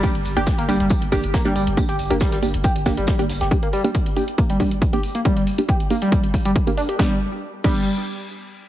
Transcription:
<<
  \new Staff \with { instrumentName = "Synth stab" } { \time 4/4 \key g \minor \tempo 4 = 138 <bes d' g'>16 r8 <bes d' g'>16 r8 <bes d' g'>16 r8. <bes d' g'>16 r8 <bes d' g'>16 r8 | <bes d' g'>16 r8 <bes d' g'>16 r8 <bes d' g'>16 r8. <bes d' g'>16 r8 <bes d' g'>16 r8 | <bes d' g'>16 r8 <bes d' g'>16 r8 <bes d' g'>16 r8. <bes d' g'>16 r8 <bes d' g'>16 r8 | <bes d' g'>16 r8 <bes d' g'>16 r8 <bes d' g'>16 r4. <bes d' g'>16 r8 |
<b d' g'>16 r4 r16 <b d' g'>8 r2 | }
  \new Staff \with { instrumentName = "Analog synth lead" } { \clef bass \time 4/4 \key g \minor g16 r8 g'16 r16 bes16 g16 g16 r8 g'16 r16 bes16 g16 g16 r16 | r16 g'16 r16 bes16 g16 g16 r8 g'16 r16 bes16 g16 g16 r8 g'16 | r16 bes16 g16 g16 r8 g'16 r16 bes16 g16 g16 r8 g'16 r16 bes16 | g16 g16 r8 g'16 r16 bes16 g16 g16 r8 g16 r16 bes16 d'16 g'16 |
g16 r4 r16 g8 r2 | }
  \new Staff \with { instrumentName = "Sub bass" } { \clef bass \time 4/4 \key g \minor r16 g,,16 g,,16 g,,16 r16 g,,16 g,,16 g,,16 r16 g,,16 g,,16 g,,16 r16 g,,16 g,,16 g,,16 | r16 g,,16 g,,16 g,,16 r16 g,,16 g,,16 g,,16 r16 g,,16 g,,16 g,,16 r16 g,,16 g,,16 g,,16 | r1 | r1 |
r1 | }
  \new DrumStaff \with { instrumentName = "Drums" } \drummode { \time 4/4 <hh bd tamb>16 hh16 <hho tamb>16 hh16 <hh bd sn tamb>16 hh16 <hho tamb>16 hh16 <hh bd tamb>16 hh16 <hho bd sn tamb>16 hh16 <hh bd sn tamb>16 <hh sn>16 <hho tamb>16 hh16 | <hh bd tamb>16 hh16 <hho tamb>16 hh16 <hh bd sn tamb>16 <hh sn>16 <hho tamb>16 hh16 <hh bd tamb>16 hh16 <hho bd sn tamb>16 hh16 <hh bd sn tamb>16 hh16 <hho sn tamb>16 <hh sn>16 | <hh bd>16 hh16 hho16 hh16 <hh bd>16 hh16 hho16 hh16 <hh bd>16 hh16 <hho bd>16 hh16 <hh bd>16 hh16 hho16 hh16 | <hh bd>16 hh16 hho16 hh16 <hh bd>16 hh16 hho16 hh16 <hh bd>16 hh16 <hho bd>16 hh16 <hh bd>16 hh16 hho16 hh16 |
<bd sn>4 r8 <cymc bd>8 r4 r4 | }
>>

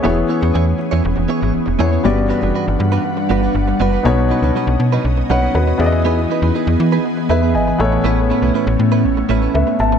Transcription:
<<
  \new Staff \with { instrumentName = "Grand piano" } { \time 4/4 \key e \major \tempo 4 = 120 << { r1 | r1 | r2 r8 <cis'' fis''>8 <fis' b'>4 | r2 r8 <b' e''>8 <dis'' gis''>4 |
r2. <b' e''>8 <e'' a''>8 | } \\ { <b e' fis' gis' cis''>2.~ <b e' fis' gis' cis''>8 <b e' gis' cis''>8 | <b fis' g' d''>1 | <b dis' fis' cis''>2.~ <b dis' fis' cis''>8 <b e' gis' d'' dis''>8~ | <b e' gis' d'' dis''>2.~ <b e' gis' d'' dis''>8 <b e' a' cis''>8~ |
<b e' a' cis''>2.~ <b e' a' cis''>8 r8 | } >> }
  \new Staff \with { instrumentName = "Grand piano" } { \clef bass \time 4/4 \key e \major e4. r2 r8 | g,4. r2 r8 | b,4. r2 e8~ | e4 r2 r8 a,8~ |
a,4 r2. | }
  \new Staff \with { instrumentName = "Clean electric guitar" } { \time 4/4 \key e \major <b e' gis' cis''>16 r16 <b e' gis' cis''>16 <b e' gis' cis''>16 <b e' gis' cis''>16 r8 <b e' gis' cis''>16 r8 <b e' gis' cis''>16 <b e' gis' cis''>16 r8 <b e' gis' cis''>16 <b e' gis' cis''>16 | <b d' fis' b'>16 r16 <b d' fis' b'>16 <b d' fis' b'>16 <b d' fis' b'>16 r8 <b d' fis' b'>16 r8 <b d' fis' b'>16 <b d' fis' b'>16 r8 <b d' fis' b'>16 <b d' fis' b'>16 | <fis cis' dis' b'>16 r16 <fis cis' dis' b'>16 <fis cis' dis' b'>16 <fis cis' dis' b'>16 r8 <fis cis' dis' b'>16 r8 <fis cis' dis' b'>16 <fis cis' dis' b'>16 r4 | <b dis' gis' b'>16 r16 <b dis' gis' b'>16 <b dis' gis' b'>16 <b dis' gis' b'>16 r8 <b dis' gis' b'>16 r8 <b dis' gis' b'>16 <b dis' gis' b'>16 r4 |
<a cis' e' b'>16 r16 <a cis' e' b'>16 <a cis' e' b'>16 <a cis' e' b'>16 r8 <a cis' e' b'>16 r8 <a cis' e' b'>16 <a cis' e' b'>16 r4 | }
  \new Staff \with { instrumentName = "Ambient pad" } { \time 4/4 \key e \major << { <e cis' gis'>1 | <g b' fis''>1 | <cis' dis''>2.~ <cis' dis''>8 <e gis'>8~ | <e gis'>2.~ <e gis'>8 cis'8~ |
cis'1 | } \\ { b1 | d'1 | b1~ | b2.~ b8 a8~ |
a1 | } >> }
  \new Staff \with { instrumentName = "FM bass" } { \clef bass \time 4/4 \key e \major e,,8 r16 e,16 e,8 r16 e,16 e,,16 e,,16 r16 gis,,16 r16 e,,16 e,8 | g,,8. fis,,16 r16 g,,16 g,8 r8 g,,8 g,,8 fis,,8 | b,,8. cis,16 r16 b,,16 b,8 b,,8 b,,8 dis,8 e,8~ | e,8. e,16 r16 e,16 e8 r8 e,8 gis,,8 a,,8 |
a,,8. b,,16 r16 a,,16 a,8 a,,8 a,,8 cis,16 r16 gis,,8 | }
>>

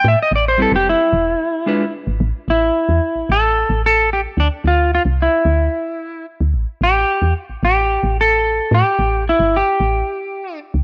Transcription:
<<
  \new Staff \with { instrumentName = "Electric slide guitar" } { \time 4/4 \key a \minor \tempo 4 = 111 e''16 dis''16 d''16 c''16 a'16 g'16 e'2 r8 | r8 e'4. a'4 a'8 g'8 | d'8 f'8 f'8 e'2 r8 | r8 g'4 r8 g'4 a'4 |
g'4 e'8 g'2 r8 | }
  \new Staff \with { instrumentName = "Clean electric guitar" } { \time 4/4 \key a \minor r4 <g c' e' b'>8 r4. <gis d' f' b'>8 r8 | r1 | r1 | r1 |
r1 | }
  \new Staff \with { instrumentName = "FM bass" } { \clef bass \time 4/4 \key a \minor a,16 r16 a,,8. f,,8 r16 e,,8 r4 r16 gis,,16 | a,,16 r16 a,,8 r16 e,16 r16 a,,16 a,,8. a,,4~ a,,16 | d,16 r16 d,8. c,8 r16 d,8 r4 r16 d,16 | a,,16 r16 a,,8 r16 e,16 r16 a,,16 a,,8. a,,4~ a,,16 |
a,16 r16 a,,8. g,,8 r16 a,,8 r4 r16 cis,16 | }
>>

